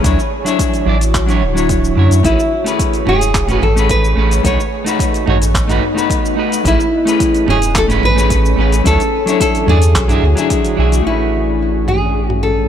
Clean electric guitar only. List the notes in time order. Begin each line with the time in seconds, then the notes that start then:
0.02 F#3 D4 E4 C#5
0.44 F#3 D4 E4 C#5
0.85 F#3 D4 E4 D5
1.26 F#3 D4 E4 C#5
1.54 F#3 D4 E4 C#5
1.95 F#3 D4 E4 C#5
2.23 A3 C#4 G#4 B4
2.64 A3 C#4 G#4 B4
3.05 A3 C#4 G#4 C#5
3.48 A3 C#4 G#4
3.52 B4
3.76 A3 C#4 G#4 B4
4.15 A3 C#4 G#4 B4
4.43 A3 D#4 F#4 B4
4.84 A3 D#4 F#4 B4
5.26 A3 D#4 F#4 C#5
5.67 A3 D#4 F#4 B4
5.95 A3 D#4 F#4 B4
6.36 A3 D#4 F#4 B4
6.64 A3 C#4 G#4 B4
7.05 A3 C#4 G#4 B4
7.46 A3 C#4 G#4
7.51 C#5
7.88 A3 C#4 G#4 B4
8.15 A3 C#4 G#4
8.19 B4
8.56 A3 C#4 G#4
8.60 B4
8.84 F#3 D4 E4 C#5
9.26 F#3 D4 E4
9.30 C#5
9.66 F#3 D4 E4 D5
10.08 F#3 D4 E4 G#4
10.35 F#3 D4 E4 G#4
10.76 F#3 D4 E4
10.80 G#4
11.02 A3 C#4
11.07 G#4 B4